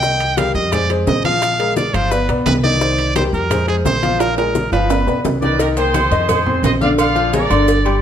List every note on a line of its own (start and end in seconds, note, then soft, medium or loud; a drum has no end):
0.00 0.49 C2 medium
0.00 0.31 D#3 medium
0.00 0.32 D#4 medium
0.00 0.32 D#5 medium
0.00 0.39 G5 loud
0.00 high bongo medium
0.00 high conga soft
0.00 maracas medium
0.20 high conga soft
0.20 high timbale medium
0.20 maracas soft
0.37 0.66 G3 medium
0.37 0.66 G4 medium
0.37 0.67 A#4 medium
0.37 0.55 F5 medium
0.37 high bongo medium
0.37 high conga medium
0.37 high timbale loud
0.37 low timbale medium
0.37 maracas medium
0.54 1.03 F2 loud
0.54 0.74 D#5 medium
0.54 high bongo soft
0.54 high conga soft
0.54 maracas soft
0.72 0.87 G#3 medium
0.72 0.87 G#4 medium
0.72 0.87 C5 medium
0.72 0.90 D5 loud
0.72 high bongo medium
0.72 high conga soft
0.72 low conga medium
0.72 high timbale medium
0.72 maracas medium
0.90 1.19 G#3 medium
0.90 1.19 G#4 medium
0.90 1.19 C5 medium
0.90 high bongo soft
0.90 high conga soft
0.90 high timbale medium
0.90 maracas soft
1.07 1.88 A#1 medium
1.07 1.24 D#5 medium
1.07 high bongo soft
1.07 low bongo medium
1.07 high conga medium
1.07 low timbale medium
1.07 maracas medium
1.25 1.53 F3 medium
1.25 1.53 F4 medium
1.25 1.73 F5 loud
1.25 1.54 F5 medium
1.25 high bongo soft
1.25 high conga medium
1.25 high timbale medium
1.25 maracas soft
1.42 high bongo medium
1.42 high conga soft
1.42 high timbale medium
1.42 maracas medium
1.59 1.88 G#3 medium
1.59 1.88 G#4 medium
1.59 1.88 A#4 medium
1.59 high conga soft
1.59 high timbale medium
1.59 maracas soft
1.76 1.96 D5 medium
1.76 high bongo medium
1.76 high conga medium
1.76 low timbale medium
1.76 maracas medium
1.94 2.26 G1 medium
1.94 2.08 F3 medium
1.94 2.09 F4 medium
1.94 2.13 C5 medium
1.94 2.09 F5 medium
1.94 high bongo soft
1.94 high conga soft
1.94 high timbale medium
1.94 maracas soft
2.11 2.26 B3 medium
2.11 2.29 B4 medium
2.11 2.26 B4 medium
2.11 2.26 D5 medium
2.11 high bongo medium
2.11 high conga soft
2.11 maracas medium
2.28 2.45 B1 medium
2.28 2.58 B3 medium
2.28 2.58 B4 medium
2.28 2.58 D5 medium
2.28 high bongo soft
2.28 high conga soft
2.28 high timbale medium
2.28 maracas soft
2.46 3.27 C2 medium
2.46 2.54 B4 loud
2.46 high bongo soft
2.46 low bongo medium
2.46 high conga loud
2.46 high timbale medium
2.46 low timbale medium
2.46 maracas medium
2.63 2.78 D#3 medium
2.63 2.78 D#4 medium
2.63 3.12 D5 loud
2.63 2.78 D#5 medium
2.63 high bongo soft
2.63 high conga medium
2.63 maracas soft
2.81 3.10 D#3 medium
2.81 3.10 D#4 medium
2.81 3.10 C5 medium
2.81 high bongo medium
2.81 high conga soft
2.81 maracas medium
2.98 high conga soft
2.98 high timbale medium
2.98 maracas soft
3.16 3.44 G3 medium
3.16 3.45 G4 medium
3.16 3.45 A#4 medium
3.16 3.24 C5 medium
3.16 high bongo medium
3.16 high conga loud
3.16 high timbale loud
3.16 low timbale medium
3.16 maracas medium
3.33 3.82 F2 loud
3.33 3.66 A#4 medium
3.33 high bongo soft
3.33 high conga soft
3.33 maracas soft
3.50 3.65 G#3 medium
3.50 3.65 G#4 medium
3.50 3.65 C5 medium
3.50 high bongo medium
3.50 high conga soft
3.50 low conga medium
3.50 high timbale medium
3.50 maracas medium
3.67 3.96 G#3 medium
3.67 3.96 G#4 medium
3.67 3.76 G#4 medium
3.67 3.97 C5 medium
3.67 high bongo soft
3.67 high conga soft
3.67 high timbale medium
3.67 maracas soft
3.85 4.66 A#1 medium
3.85 4.22 C5 medium
3.85 high bongo soft
3.85 low bongo medium
3.85 high conga medium
3.85 low timbale medium
3.85 maracas medium
4.03 4.31 F3 medium
4.03 4.32 F4 medium
4.03 4.32 F5 medium
4.03 high bongo soft
4.03 high conga medium
4.03 high timbale medium
4.03 maracas soft
4.20 4.37 A#4 medium
4.20 high bongo medium
4.20 high conga soft
4.20 high timbale medium
4.20 maracas medium
4.38 4.66 G#3 medium
4.38 4.67 G#4 medium
4.38 4.70 A#4 medium
4.38 4.67 A#4 medium
4.38 high conga soft
4.38 high timbale medium
4.38 maracas soft
4.55 high bongo medium
4.55 high conga medium
4.55 maracas medium
4.72 5.05 G1 loud
4.72 4.87 F3 medium
4.72 4.87 F4 medium
4.72 5.21 B4 medium
4.72 4.87 F5 medium
4.72 high bongo soft
4.72 high conga soft
4.72 high timbale medium
4.72 maracas soft
4.90 5.04 B3 medium
4.90 5.04 B4 medium
4.90 5.04 D5 medium
4.90 high bongo medium
4.90 high conga soft
4.90 low timbale loud
4.90 maracas medium
5.07 5.23 B1 medium
5.07 5.36 B3 medium
5.07 5.36 B4 medium
5.07 5.36 D5 medium
5.07 high bongo soft
5.07 high conga soft
5.07 low timbale medium
5.07 maracas soft
5.24 6.06 C2 medium
5.24 high bongo soft
5.24 low bongo medium
5.24 high conga medium
5.24 low timbale medium
5.24 maracas medium
5.42 5.56 D#3 medium
5.42 5.56 D#4 medium
5.42 5.59 B4 medium
5.42 5.58 D5 loud
5.42 5.57 D#5 medium
5.42 high bongo soft
5.42 high conga medium
5.42 low timbale medium
5.42 maracas soft
5.59 5.74 D#3 medium
5.59 5.74 D#4 medium
5.59 5.68 G4 medium
5.59 5.67 A#4 medium
5.59 5.74 D#5 medium
5.59 cowbell loud
5.59 high conga soft
5.59 low agogo medium
5.59 maracas medium
5.77 6.05 A#3 medium
5.77 6.26 G#4 medium
5.77 6.06 A#4 medium
5.77 6.26 C5 loud
5.77 6.06 G5 medium
5.77 cowbell medium
5.77 high conga soft
5.77 low agogo medium
5.77 maracas medium
5.94 cowbell medium
5.94 high conga medium
5.94 low timbale medium
5.94 low agogo loud
5.94 maracas medium
6.11 6.60 F2 loud
6.11 6.40 D#3 medium
6.11 6.40 D#4 loud
6.11 6.41 D#5 loud
6.11 cowbell medium
6.11 high conga soft
6.11 maracas soft
6.29 6.62 G#4 medium
6.29 6.61 C5 medium
6.29 cowbell loud
6.29 high conga soft
6.29 low conga medium
6.29 low agogo loud
6.29 maracas medium
6.46 6.75 C4 medium
6.46 6.75 C5 medium
6.46 6.75 C6 medium
6.46 high conga soft
6.46 low conga medium
6.63 7.45 A#1 medium
6.63 6.72 C5 medium
6.63 6.72 D#5 loud
6.63 cowbell medium
6.63 high conga medium
6.63 low timbale loud
6.63 low agogo medium
6.63 maracas medium
6.81 7.09 D3 medium
6.81 7.10 D4 medium
6.81 7.10 D5 medium
6.81 6.90 D5 medium
6.81 6.89 F5 loud
6.81 high conga medium
6.81 maracas soft
6.98 7.31 D5 medium
6.98 7.31 F5 loud
6.98 cowbell loud
6.98 high conga soft
6.98 low agogo loud
6.98 maracas medium
7.16 7.30 F3 medium
7.16 7.30 F4 medium
7.16 7.30 F5 medium
7.16 high conga soft
7.16 low agogo medium
7.33 7.47 G#3 medium
7.33 7.48 G#4 medium
7.33 7.66 A#4 medium
7.33 7.99 D5 loud
7.33 7.48 G#5 medium
7.33 cowbell medium
7.33 high conga loud
7.33 low timbale medium
7.33 maracas medium
7.50 7.99 G1 loud
7.50 7.79 D3 medium
7.50 7.79 D4 medium
7.50 7.79 D5 medium
7.50 cowbell medium
7.50 high conga soft
7.50 low agogo loud
7.50 maracas soft
7.68 cowbell loud
7.68 high conga soft
7.68 maracas medium
7.85 8.02 G3 medium
7.85 8.02 G4 medium
7.85 8.02 G5 medium
7.85 cowbell medium
7.85 high conga soft
7.85 low agogo medium